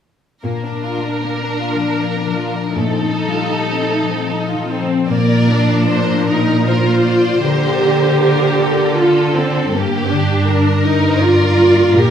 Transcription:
0.44 2.76 A#2 soft
0.44 1.08 A#2 soft
0.44 0.62 A#3 soft
0.44 2.72 D4 soft
0.44 2.72 A#4 soft
0.65 0.84 D4 soft
0.72 1.23 A#3 soft
0.83 1.04 F4 soft
0.97 1.42 A3 soft
1.04 1.24 D4 soft
1.23 1.43 A#3 soft
1.23 2.50 A#3 soft
1.43 1.62 D4 soft
1.49 1.99 D4 soft
1.61 1.81 F4 soft
1.75 2.25 F3 soft
1.79 2.00 D4 soft
1.99 2.19 A#3 soft
1.99 2.78 D4 soft
2.18 2.38 D4 soft
2.26 4.01 F3 soft
2.35 2.56 F4 soft
2.51 2.79 A#3 soft
2.51 2.75 D4 soft
2.73 3.36 A#2 soft
2.73 5.09 A#2 soft
2.73 2.92 A3 soft
2.73 4.69 D#4 soft
2.73 4.88 A4 soft
2.93 3.12 C4 soft
3.01 3.50 A3 soft
3.11 3.31 D#4 soft
3.26 3.69 G3 soft
3.32 3.51 F4 soft
3.51 4.81 A3 soft
3.51 3.70 D#4 soft
3.71 3.89 C4 soft
3.77 4.27 D#4 soft
3.89 4.09 A3 soft
4.03 4.53 F3 soft
4.08 4.28 C4 soft
4.28 5.13 D#4 soft
4.28 4.49 D#4 soft
4.48 4.69 F4 soft
4.54 5.48 F3 soft
4.68 5.06 C4 soft
4.68 4.89 D#4 soft
4.82 5.13 A3 soft
4.88 5.09 C4 soft
5.09 7.39 A#2 soft
5.09 7.47 A#2 soft
5.09 5.50 A#3 soft
5.09 5.85 A#4 soft
5.09 5.86 D5 soft
5.49 9.39 F3 soft
5.49 6.28 D4 soft
5.89 9.36 D4 soft
5.89 6.66 A#4 soft
5.89 6.28 C5 soft
6.27 6.67 D#4 soft
6.27 8.97 A#4 soft
6.27 6.65 A#4 soft
6.66 8.19 F4 soft
6.66 7.44 F4 soft
6.66 7.04 A#4 soft
6.66 7.05 C5 soft
7.05 7.81 A#3 soft
7.05 8.19 C5 soft
7.05 7.43 D5 soft
7.42 9.70 D3 soft
7.42 9.78 D3 soft
7.42 8.96 G4 medium
7.42 8.21 A#4 soft
7.82 11.58 A#3 soft
8.21 11.20 F4 soft
8.21 8.59 A#4 soft
8.21 8.61 C5 soft
8.60 9.75 A4 soft
8.60 8.98 A#4 soft
8.60 12.10 D5 soft
8.98 9.37 F4 soft
8.98 9.75 A4 soft
8.98 10.83 A#4 soft
9.36 9.74 C4 soft
9.36 10.47 D4 soft
9.75 12.00 G2 soft
9.75 11.93 G2 soft
9.75 10.12 A#3 soft
9.75 10.49 G4 soft
10.12 12.00 D3 soft
10.12 10.84 D4 soft
10.47 12.10 D4 soft
10.47 11.21 A#4 soft
10.47 11.95 A#4 soft
10.84 11.21 D#4 soft
10.84 12.10 A#4 soft
11.20 12.00 F4 soft
11.20 11.97 F4 medium
11.20 11.96 D5 soft
11.60 12.10 A#3 soft
11.95 12.10 A#2 soft
11.95 12.10 G4 medium
11.95 12.10 A#4 soft

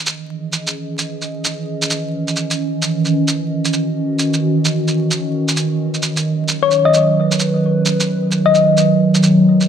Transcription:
0.00 9.68 D#3 medium
0.00 6.02 E3 medium
0.00 0.29 A#3 medium
0.00 9.68 C#4 medium
0.00 3.30 G#4 medium
0.00 9.68 D#5 medium
0.06 shaker medium
0.53 shaker medium
0.67 shaker soft
0.98 shaker soft
1.21 shaker soft
1.44 shaker medium
1.82 shaker medium
1.90 shaker medium
2.28 shaker soft
2.36 shaker soft
2.50 shaker soft
2.82 shaker soft
3.05 shaker soft
3.19 7.25 F#4 medium
3.28 shaker medium
3.65 shaker medium
3.73 shaker soft
4.19 shaker soft
4.33 shaker soft
4.65 shaker soft
4.88 shaker soft
5.11 shaker soft
5.48 shaker soft
5.57 shaker soft
5.94 shaker soft
6.02 9.68 F#3 medium
6.02 shaker soft
6.17 shaker soft
6.48 9.68 B4 medium
6.48 shaker soft
6.63 6.82 C#5 medium
6.71 shaker soft
6.85 7.17 D#5 medium
6.94 shaker soft
7.31 shaker soft
7.39 shaker soft
7.85 shaker soft
8.00 shaker soft
8.31 shaker soft
8.46 9.08 D#5 medium
8.54 shaker soft
8.77 shaker soft
9.14 shaker soft
9.23 shaker soft
9.60 shaker soft

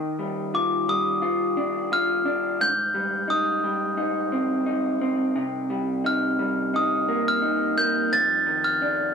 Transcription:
0.00 3.34 D#3 medium
0.00 0.54 D#4 medium
0.19 0.88 G3 medium
0.54 1.21 F4 medium
0.54 0.89 D6 medium
0.88 2.94 G3 medium
0.88 1.94 D#6 medium
1.22 1.91 F4 medium
1.57 2.24 D4 medium
1.92 2.67 F4 medium
1.92 2.62 F6 loud
2.25 2.66 D4 medium
2.60 5.36 G#2 medium
2.60 3.31 G6 loud
2.94 3.63 G3 medium
3.28 3.97 D#4 medium
3.28 4.63 D#6 medium
3.64 5.70 G3 medium
3.97 4.66 D#4 medium
4.32 5.01 C4 medium
4.66 6.04 D#4 medium
5.01 7.08 C4 medium
5.36 8.11 C3 medium
5.70 6.39 G3 medium
6.04 6.73 D#4 medium
6.04 6.70 F6 medium
6.39 8.46 G3 medium
6.74 7.42 D#4 medium
6.74 7.28 D#6 medium
7.09 7.76 A#3 medium
7.28 7.74 F6 loud
7.42 8.81 D#4 medium
7.77 8.18 A#3 medium
7.77 8.12 G6 medium
8.12 9.14 F2 medium
8.12 8.65 A6 loud
8.47 9.14 D#3 medium
8.64 9.14 F6 medium
8.82 9.14 D4 medium

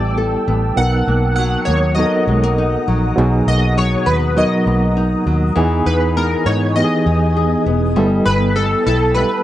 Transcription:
0.00 0.35 A1 medium
0.00 0.77 G3 medium
0.00 0.79 G3 medium
0.00 0.47 B3 medium
0.00 0.77 B3 medium
0.00 0.79 E4 medium
0.00 0.83 E4 medium
0.00 0.66 G4 medium
0.00 0.79 A4 loud
0.00 0.14 D5 medium
0.00 0.75 G5 medium
0.00 0.75 A5 medium
0.00 0.75 E6 medium
0.17 0.83 A4 medium
0.48 0.72 A1 medium
0.48 1.08 B3 medium
0.76 1.01 B1 loud
0.76 1.84 F#3 medium
0.76 1.85 B3 medium
0.76 1.85 D#4 medium
0.76 1.86 A#4 medium
0.76 1.35 F#5 loud
0.76 5.53 F#5 medium
0.76 3.15 A#5 medium
0.76 7.93 D#6 medium
1.07 1.55 B1 loud
1.07 1.67 A#3 medium
1.36 1.97 F#3 medium
1.36 1.64 F#5 loud
1.65 2.03 D#2 medium
1.65 2.27 A#3 medium
1.65 1.94 C#5 medium
1.95 3.04 F#3 medium
1.95 3.05 B3 medium
1.95 3.05 D#4 medium
1.95 2.82 D#5 medium
1.99 2.86 F#3 medium
1.99 2.05 A4 medium
2.05 3.09 A#4 medium
2.27 2.75 B1 medium
2.27 2.43 G#3 medium
2.43 3.46 A#3 medium
2.58 4.96 D#4 medium
2.88 3.11 A#1 medium
2.88 3.76 F#3 medium
3.16 3.41 B1 loud
3.16 5.57 B2 medium
3.16 4.24 F#3 medium
3.16 4.24 B3 medium
3.16 4.25 D#4 medium
3.16 4.25 G#4 loud
3.16 5.54 A#5 medium
3.47 3.95 B1 medium
3.47 4.07 A#3 medium
3.47 3.75 D#5 loud
3.77 4.35 F#3 medium
3.77 4.08 C#5 medium
4.06 4.43 D#2 medium
4.06 4.37 B4 medium
4.36 5.44 F#3 medium
4.36 5.26 F#3 medium
4.36 5.44 B3 medium
4.36 5.45 D#4 medium
4.36 5.45 A#4 medium
4.36 4.93 D#5 medium
4.66 5.14 B1 loud
4.66 5.63 A#3 medium
4.97 5.86 D#4 medium
5.26 5.50 D#2 medium
5.26 5.55 F#3 medium
5.56 5.80 E2 medium
5.56 7.96 E3 medium
5.56 6.64 E3 loud
5.56 6.64 B3 medium
5.56 7.94 B3 medium
5.56 6.65 D#4 medium
5.56 6.65 G#4 loud
5.56 7.94 D#5 medium
5.56 7.94 G#5 medium
5.86 6.34 E2 loud
5.86 6.46 D#4 medium
5.86 6.14 B4 medium
6.17 6.77 B3 medium
6.17 6.48 A#4 medium
6.46 6.82 G#2 medium
6.46 7.05 D#4 medium
6.46 6.74 C#5 loud
6.75 7.84 E3 medium
6.75 7.84 B3 medium
6.75 7.66 B3 medium
6.75 7.85 D#4 medium
6.75 6.84 G4 medium
6.75 7.62 D#5 loud
6.84 7.88 G#4 medium
7.06 7.54 E2 loud
7.06 8.02 D#4 medium
7.37 8.03 G#4 medium
7.66 7.96 E1 medium
7.66 8.56 B3 medium
7.96 8.20 G1 loud
7.96 9.43 G3 medium
7.96 9.04 G3 medium
7.96 9.05 B3 medium
7.96 9.05 E4 medium
7.96 9.05 A4 loud
7.96 9.43 B4 medium
7.96 9.43 G5 medium
7.96 9.43 A5 medium
7.96 9.43 E6 medium
8.26 8.74 G1 loud
8.26 8.86 E4 medium
8.26 8.57 B4 loud
8.56 9.16 B3 medium
8.56 8.85 A4 medium
8.87 9.23 B1 medium
8.87 9.43 E4 medium
8.87 9.17 A4 medium
9.14 9.43 G3 medium
9.14 9.43 B3 medium
9.14 9.43 E4 medium
9.14 9.43 A4 medium
9.14 9.43 B4 medium

